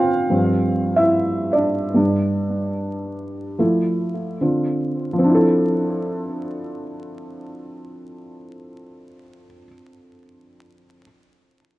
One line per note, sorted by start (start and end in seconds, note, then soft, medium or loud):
0.00 0.32 D3 medium
0.00 0.31 F3 medium
0.00 0.31 C4 medium
0.00 0.94 F4 medium
0.00 0.32 C5 medium
0.00 1.00 F5 loud
0.00 0.32 G5 medium
0.30 0.89 G2 medium
0.30 0.89 F3 medium
0.30 0.90 C4 medium
0.96 1.50 E4 medium
0.96 1.55 E5 medium
1.53 1.94 D4 medium
1.53 4.78 D5 medium
1.94 3.55 G2 medium
1.94 3.55 G3 medium
1.94 3.55 D4 medium
3.59 4.37 F3 medium
3.59 4.37 A3 medium
3.59 4.38 E4 medium
4.41 5.19 D3 medium
4.41 5.17 C4 soft
4.41 5.20 F4 medium
5.13 9.46 F3 medium
5.18 9.52 C4 medium
5.24 9.57 D4 medium
5.29 9.62 E4 medium
5.34 9.68 A4 medium